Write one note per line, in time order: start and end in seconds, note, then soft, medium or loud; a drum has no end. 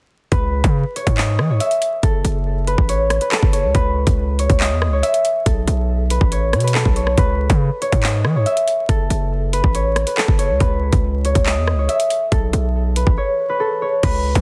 0.32 0.63 C#2 loud
0.32 2.37 B4 loud
0.32 kick loud
0.32 closed hi-hat medium
0.64 0.84 C#3 loud
0.64 kick loud
0.64 closed hi-hat medium
0.96 1.50 C#5 medium
0.96 closed hi-hat medium
1.07 1.40 G#2 loud
1.07 kick loud
1.07 closed hi-hat medium
1.17 1.66 D#5 medium
1.17 clap loud
1.39 1.51 E3 loud
1.39 cross-stick medium
1.50 1.60 G#2 loud
1.50 2.89 C#5 medium
1.60 3.32 E5 medium
1.60 closed hi-hat medium
1.71 closed hi-hat medium
1.82 closed hi-hat medium
2.03 2.24 F#1 loud
2.03 3.31 A4 loud
2.03 kick loud
2.03 closed hi-hat medium
2.25 2.76 F#1 loud
2.25 closed hi-hat medium
2.67 3.21 B4 medium
2.67 closed hi-hat medium
2.78 3.19 A1 loud
2.78 kick loud
2.89 3.52 C#5 medium
2.89 closed hi-hat medium
3.10 cross-stick medium
3.10 closed hi-hat medium
3.21 3.74 B4 medium
3.21 closed hi-hat medium
3.31 5.46 A4 medium
3.31 clap loud
3.43 3.65 F#1 loud
3.43 kick loud
3.53 4.39 C#5 medium
3.53 closed hi-hat medium
3.64 3.74 C#2 loud
3.75 4.06 C#2 loud
3.75 5.80 B4 loud
3.75 kick loud
3.75 closed hi-hat medium
4.07 4.48 C#2 loud
4.07 kick loud
4.07 closed hi-hat medium
4.39 4.92 C#5 medium
4.39 closed hi-hat medium
4.50 4.73 C#2 loud
4.50 kick loud
4.50 closed hi-hat medium
4.60 5.09 D#5 medium
4.60 clap loud
4.71 4.89 E2 loud
4.82 cross-stick medium
4.87 5.02 C#2 loud
4.93 6.32 C#5 medium
5.03 6.75 E5 medium
5.03 closed hi-hat medium
5.14 closed hi-hat medium
5.25 closed hi-hat medium
5.46 5.67 B1 loud
5.46 6.74 A4 loud
5.46 kick loud
5.46 closed hi-hat medium
5.67 6.19 B1 loud
5.67 closed hi-hat medium
6.10 6.63 B4 medium
6.10 closed hi-hat medium
6.21 6.55 A1 loud
6.21 kick loud
6.32 6.96 C#5 medium
6.32 closed hi-hat medium
6.53 6.84 B2 loud
6.53 cross-stick medium
6.53 closed hi-hat soft
6.60 7.18 B4 medium
6.60 closed hi-hat medium
6.68 closed hi-hat medium
6.74 8.88 A4 medium
6.74 clap loud
6.85 7.16 B1 loud
6.85 kick loud
6.96 7.81 C#5 medium
6.96 closed hi-hat medium
7.07 cross-stick medium
7.18 7.48 C#2 loud
7.18 9.23 B4 loud
7.18 kick loud
7.18 closed hi-hat medium
7.50 7.70 C#3 loud
7.50 kick loud
7.50 closed hi-hat medium
7.82 8.35 C#5 medium
7.82 closed hi-hat medium
7.92 8.26 G#2 loud
7.92 kick loud
7.92 closed hi-hat medium
8.03 8.52 D#5 medium
8.03 clap loud
8.25 8.37 E3 loud
8.25 cross-stick medium
8.35 8.46 G#2 loud
8.35 9.74 C#5 medium
8.46 10.18 E5 medium
8.46 closed hi-hat medium
8.57 closed hi-hat medium
8.68 closed hi-hat medium
8.89 9.10 F#1 loud
8.89 10.17 A4 loud
8.89 kick loud
8.89 closed hi-hat medium
9.10 9.62 F#1 loud
9.10 closed hi-hat medium
9.53 10.06 B4 medium
9.53 closed hi-hat medium
9.64 10.05 A1 loud
9.64 kick loud
9.75 10.38 C#5 medium
9.75 closed hi-hat medium
9.96 cross-stick medium
9.96 closed hi-hat medium
10.07 10.60 B4 medium
10.07 closed hi-hat medium
10.17 12.32 A4 medium
10.17 clap loud
10.28 10.51 F#1 loud
10.28 kick medium
10.38 11.25 C#5 medium
10.38 closed hi-hat medium
10.50 10.60 C#2 loud
10.60 10.91 C#2 loud
10.60 12.65 B4 loud
10.60 kick loud
10.60 closed hi-hat medium
10.93 11.34 C#2 loud
10.93 kick loud
10.93 closed hi-hat medium
11.25 11.78 C#5 medium
11.25 closed hi-hat medium
11.35 11.58 C#2 loud
11.35 kick loud
11.35 closed hi-hat medium
11.46 11.95 D#5 medium
11.46 clap loud
11.57 11.74 E2 loud
11.68 cross-stick medium
11.73 11.88 C#2 medium
11.79 13.17 C#5 medium
11.88 13.61 E5 medium
11.88 closed hi-hat medium
12.00 closed hi-hat medium
12.10 closed hi-hat medium
12.32 12.52 B1 loud
12.32 13.59 A4 loud
12.32 kick loud
12.32 closed hi-hat medium
12.53 13.05 B1 loud
12.53 closed hi-hat medium
12.96 13.49 B4 medium
12.96 closed hi-hat medium
13.07 13.17 A1 loud
13.07 kick loud
13.18 13.81 C#5 medium
13.49 14.03 B4 medium
13.60 14.41 A4 medium
13.82 14.41 C#5 medium
14.03 14.34 C#2 loud
14.03 14.41 B4 loud
14.03 kick loud
14.03 closed hi-hat medium
14.03 crash medium
14.35 14.41 C#3 loud
14.35 kick loud
14.35 closed hi-hat medium